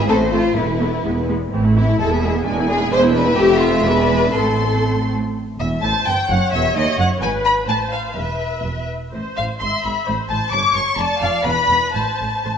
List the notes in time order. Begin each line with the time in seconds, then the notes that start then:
0.09 A1 A2 A3 C4 A4 C5
0.33 A3 C4 F4
0.56 E1 E2 A3 B3 E4 B4
0.80 A3 B3
1.04 E1 E2 G#3 B3
1.29 G#3 B3
1.52 A1 A2 E3 C4
1.64 A3 E4
1.76 E3 C4 E4
1.88 A3 E4
1.99 E1 E2 G#3 E4 A4 E5
2.12 B3 G#4
2.23 G#3 E4 G#4
2.35 B3 G#4
2.46 E1 E2 G#3 D4 G#5
2.57 B3 E4
2.69 G#3 D4 G#4
2.80 B3 E4
2.91 E1 E2 G#3 D4 C5 E5
3.02 B3 E4
3.14 G#3 D4 B4
3.26 B3 E4
3.37 F1 F2 A3 C4 G4
3.60 F4
3.85 E1 E2 G#3 D4 B4
4.34 A1 A2 A3 C4 A4 C6
5.59 E1 E2 E5
5.83 A1 A2 C5 A5
6.07 G1 G2 G5
6.30 F#1 F#2 C#5 F#5
6.52 E1 E2 E5
6.75 D#2 D#5
6.97 F#1 F#2 F#5
7.21 G#1 G#2 B4 G#5
7.45 B5
7.68 A1 A2 C5 A5
7.92 F5
8.16 E1 E2 B4 E5
8.64 E1 E2
9.13 A1 A2 C5
9.37 A1 A2 F5
9.60 G#1 G#2 E5 C6
9.84 G#1 G#2 B5
10.07 A1 A2 C5
10.29 A1 A2 A5
10.52 G1 G2 C#5 D6
10.75 G1 G2 C#6
10.97 F1 F2 D5 A5
11.21 F1 F2 F5
11.45 E1 E2 B4 B5
11.69 E1 E2
11.95 A1 A2 C5 A5
12.20 A1 A2
12.45 A1 A2 C5